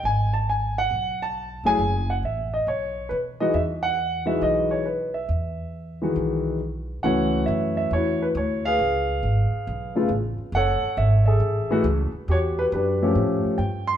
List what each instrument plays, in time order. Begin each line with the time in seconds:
0.03 upright bass G#1, grand piano G#5
0.34 grand piano A5
0.49 grand piano G#5
0.78 grand piano F#5
0.91 upright bass B1
1.22 grand piano A5
1.64 upright bass F1, grand piano F#3 A3 E4 G#4 G#5
1.79 upright bass F#1
2.10 grand piano F#5
2.23 upright bass A1, grand piano E5
2.54 grand piano D#5
2.67 upright bass B1, grand piano C#5
3.09 upright bass B2, grand piano B4
3.40 grand piano E3 G#3 D#4 F#4 D#5
3.54 upright bass E2, grand piano E5
3.83 grand piano F#5
4.26 grand piano E3 G#3 D#4 F#4 E5
4.41 upright bass B1, grand piano D#5
4.71 grand piano C#5
4.86 grand piano B4
5.14 grand piano E5
5.29 upright bass E2
6.02 grand piano D#3 E3 G#3 F#4
6.16 upright bass B1
7.03 upright bass C#2, grand piano E3 A3 C#4 F#4 C#5 F#5
7.46 upright bass F#2, grand piano E5
7.77 grand piano E5
7.91 upright bass E2, grand piano C#5
7.96 grand piano E4 F#4
8.22 grand piano B4
8.35 upright bass D2, grand piano C#5
8.65 grand piano G#4 B4 F5
8.79 upright bass C#2
9.23 upright bass G#1
9.52 muted upright bass stroke
9.67 upright bass B1
9.96 grand piano C#3 A3 B3 F4
10.09 upright bass A1
10.38 muted upright bass stroke
10.52 upright bass F#1, grand piano F#5
10.56 grand piano A4 C#5
10.82 muted upright bass stroke
10.97 upright bass G#1, grand piano E5
11.26 grand piano G#4 A4 E5
11.40 upright bass A1
11.71 grand piano E3 G#3 A3 F#4
11.84 upright bass C#2
12.12 muted upright bass stroke
12.28 upright bass E2, grand piano F#4 G4 C#5
12.59 grand piano B4
12.72 upright bass F#2, grand piano D4 G4 B4
13.02 grand piano F3 A3 C#4 G4
13.15 upright bass A2
13.44 muted upright bass stroke
13.58 upright bass G2, grand piano G5
13.87 grand piano C6